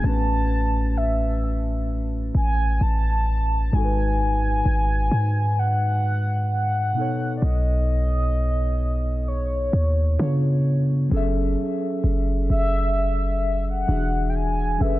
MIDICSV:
0, 0, Header, 1, 4, 480
1, 0, Start_track
1, 0, Tempo, 923077
1, 19, Time_signature, 4, 2, 24, 8
1, 7797, End_track
2, 0, Start_track
2, 0, Title_t, "Soft synth lead"
2, 0, Program_c, 0, 80
2, 27, Note_on_c, 0, 81, 125
2, 506, Note_on_c, 0, 76, 96
2, 514, Note_off_c, 0, 81, 0
2, 982, Note_off_c, 0, 76, 0
2, 1228, Note_on_c, 0, 80, 109
2, 1466, Note_on_c, 0, 81, 118
2, 1474, Note_off_c, 0, 80, 0
2, 1947, Note_on_c, 0, 80, 125
2, 1955, Note_off_c, 0, 81, 0
2, 2907, Note_on_c, 0, 78, 113
2, 2915, Note_off_c, 0, 80, 0
2, 3383, Note_off_c, 0, 78, 0
2, 3386, Note_on_c, 0, 78, 103
2, 3811, Note_off_c, 0, 78, 0
2, 3834, Note_on_c, 0, 74, 70
2, 3868, Note_on_c, 0, 75, 105
2, 3876, Note_off_c, 0, 74, 0
2, 4826, Note_on_c, 0, 73, 83
2, 4834, Note_off_c, 0, 75, 0
2, 5542, Note_off_c, 0, 73, 0
2, 6503, Note_on_c, 0, 76, 95
2, 7099, Note_off_c, 0, 76, 0
2, 7123, Note_on_c, 0, 78, 102
2, 7434, Note_on_c, 0, 79, 80
2, 7442, Note_off_c, 0, 78, 0
2, 7463, Note_on_c, 0, 80, 114
2, 7471, Note_off_c, 0, 79, 0
2, 7703, Note_on_c, 0, 76, 113
2, 7711, Note_off_c, 0, 80, 0
2, 7797, Note_off_c, 0, 76, 0
2, 7797, End_track
3, 0, Start_track
3, 0, Title_t, "Synth keys"
3, 0, Program_c, 1, 88
3, 0, Control_c, 1, 64, 127
3, 3, Note_on_c, 1, 45, 68
3, 13, Note_on_c, 1, 57, 63
3, 22, Note_on_c, 1, 61, 65
3, 26, Control_c, 1, 64, 0
3, 32, Note_on_c, 1, 66, 61
3, 42, Note_on_c, 1, 71, 75
3, 130, Control_c, 1, 64, 127
3, 1910, Note_off_c, 1, 45, 0
3, 1915, Note_off_c, 1, 57, 0
3, 1920, Note_off_c, 1, 61, 0
3, 1924, Note_on_c, 1, 44, 64
3, 1925, Note_off_c, 1, 66, 0
3, 1930, Note_off_c, 1, 71, 0
3, 1934, Note_on_c, 1, 56, 64
3, 1943, Note_on_c, 1, 63, 64
3, 1946, Control_c, 1, 64, 0
3, 1954, Note_on_c, 1, 66, 61
3, 1964, Note_on_c, 1, 69, 59
3, 1991, Note_off_c, 1, 69, 0
3, 1998, Note_on_c, 1, 71, 76
3, 2046, Control_c, 1, 64, 127
3, 3591, Note_off_c, 1, 44, 0
3, 3595, Note_off_c, 1, 56, 0
3, 3600, Note_off_c, 1, 63, 0
3, 3604, Note_on_c, 1, 47, 66
3, 3606, Note_off_c, 1, 66, 0
3, 3614, Note_on_c, 1, 59, 57
3, 3624, Note_on_c, 1, 63, 58
3, 3626, Control_c, 1, 64, 0
3, 3627, Note_off_c, 1, 71, 0
3, 3634, Note_on_c, 1, 69, 59
3, 3644, Note_on_c, 1, 73, 69
3, 3718, Control_c, 1, 64, 127
3, 5270, Note_off_c, 1, 47, 0
3, 5276, Note_off_c, 1, 59, 0
3, 5280, Note_off_c, 1, 63, 0
3, 5286, Note_off_c, 1, 69, 0
3, 5291, Note_off_c, 1, 73, 0
3, 5294, Note_on_c, 1, 49, 69
3, 5298, Note_on_c, 1, 59, 60
3, 5303, Note_on_c, 1, 62, 62
3, 5305, Control_c, 1, 64, 0
3, 5309, Note_on_c, 1, 65, 60
3, 5314, Note_on_c, 1, 73, 73
3, 5386, Control_c, 1, 64, 127
3, 5764, Note_on_c, 1, 54, 80
3, 5774, Note_on_c, 1, 61, 78
3, 5776, Note_off_c, 1, 49, 0
3, 5779, Note_off_c, 1, 59, 0
3, 5781, Note_off_c, 1, 62, 0
3, 5784, Note_off_c, 1, 65, 0
3, 5784, Note_on_c, 1, 68, 71
3, 5786, Note_off_c, 1, 73, 0
3, 5786, Control_c, 1, 64, 0
3, 5794, Note_on_c, 1, 69, 76
3, 5804, Note_on_c, 1, 76, 91
3, 5868, Control_c, 1, 64, 127
3, 7191, Note_off_c, 1, 54, 0
3, 7196, Note_off_c, 1, 61, 0
3, 7200, Note_off_c, 1, 68, 0
3, 7206, Note_off_c, 1, 69, 0
3, 7211, Note_off_c, 1, 76, 0
3, 7213, Note_on_c, 1, 52, 64
3, 7217, Note_on_c, 1, 62, 59
3, 7223, Note_on_c, 1, 66, 59
3, 7224, Control_c, 1, 64, 0
3, 7228, Note_on_c, 1, 68, 65
3, 7233, Note_on_c, 1, 76, 72
3, 7328, Control_c, 1, 64, 127
3, 7683, Note_on_c, 1, 54, 67
3, 7691, Note_on_c, 1, 61, 62
3, 7693, Note_off_c, 1, 68, 0
3, 7696, Note_off_c, 1, 52, 0
3, 7698, Note_off_c, 1, 62, 0
3, 7699, Note_on_c, 1, 68, 63
3, 7701, Note_off_c, 1, 66, 0
3, 7704, Control_c, 1, 64, 0
3, 7706, Note_off_c, 1, 76, 0
3, 7707, Note_on_c, 1, 69, 64
3, 7715, Note_on_c, 1, 71, 63
3, 7723, Note_on_c, 1, 76, 77
3, 7797, Note_off_c, 1, 54, 0
3, 7797, Note_off_c, 1, 61, 0
3, 7797, Note_off_c, 1, 68, 0
3, 7797, Note_off_c, 1, 69, 0
3, 7797, Note_off_c, 1, 71, 0
3, 7797, Note_off_c, 1, 76, 0
3, 7797, End_track
4, 0, Start_track
4, 0, Title_t, "808-style bass"
4, 0, Program_c, 2, 38
4, 21, Note_on_c, 2, 33, 121
4, 1199, Note_off_c, 2, 33, 0
4, 1220, Note_on_c, 2, 33, 100
4, 1450, Note_off_c, 2, 33, 0
4, 1461, Note_on_c, 2, 33, 101
4, 1921, Note_off_c, 2, 33, 0
4, 1940, Note_on_c, 2, 32, 112
4, 2400, Note_off_c, 2, 32, 0
4, 2420, Note_on_c, 2, 32, 107
4, 2650, Note_off_c, 2, 32, 0
4, 2660, Note_on_c, 2, 44, 103
4, 3598, Note_off_c, 2, 44, 0
4, 3860, Note_on_c, 2, 35, 121
4, 5038, Note_off_c, 2, 35, 0
4, 5060, Note_on_c, 2, 39, 106
4, 5290, Note_off_c, 2, 39, 0
4, 5301, Note_on_c, 2, 49, 104
4, 5761, Note_off_c, 2, 49, 0
4, 5780, Note_on_c, 2, 30, 121
4, 6010, Note_off_c, 2, 30, 0
4, 6259, Note_on_c, 2, 30, 104
4, 6490, Note_off_c, 2, 30, 0
4, 6500, Note_on_c, 2, 30, 99
4, 7198, Note_off_c, 2, 30, 0
4, 7220, Note_on_c, 2, 28, 102
4, 7680, Note_off_c, 2, 28, 0
4, 7700, Note_on_c, 2, 30, 115
4, 7797, Note_off_c, 2, 30, 0
4, 7797, End_track
0, 0, End_of_file